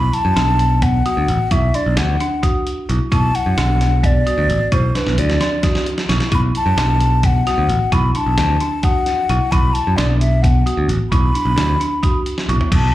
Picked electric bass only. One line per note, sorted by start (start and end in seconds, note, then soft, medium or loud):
0.25 0.34 F#2 medium
0.36 1.01 B1 medium
1.17 1.26 D2 medium
1.29 1.38 A1 medium
1.51 1.70 B1 medium
1.86 1.95 B1 medium
1.97 2.15 D2 medium
2.89 2.98 B1 medium
3.12 3.30 B1 medium
3.46 3.55 F#2 medium
3.58 4.22 B1 medium
4.38 4.47 D2 medium
4.49 4.58 A1 medium
4.72 4.90 B1 medium
5.07 5.16 B1 medium
5.18 5.36 D2 medium
6.09 6.18 B1 medium
6.32 6.50 B1 medium
6.66 6.75 F#2 medium
6.77 7.41 B1 medium
7.58 7.67 D2 medium
7.69 7.78 A1 medium
7.92 8.10 B1 medium
8.26 8.36 B1 medium
8.38 8.56 D2 medium
9.29 9.38 B1 medium
9.52 9.70 B1 medium
9.87 9.96 F#2 medium
9.98 10.62 B1 medium
10.77 10.87 D2 medium
10.88 10.98 A1 medium
11.12 11.30 B1 medium
11.45 11.55 B1 medium
11.56 11.75 D2 medium
12.49 12.58 B1 medium
12.72 12.90 B1 medium